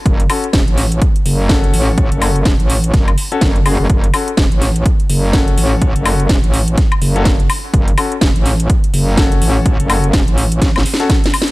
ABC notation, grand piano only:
X:1
M:4/4
L:1/16
Q:"Swing 16ths" 1/4=125
K:F#m
V:1 name="Grand piano"
z2 [CFA] z8 z [CFA]4- | [CFA]2 [CFA] z8 [CFA] z2 [CFG] z | z2 [CFA] z8 z [CFA]4- | [CFA]2 [CFA] z8 [CFA] z4 |
z2 [CFA] z8 z [CFA]4- | [CFA]2 [CFA] z8 [CFA] z4 |]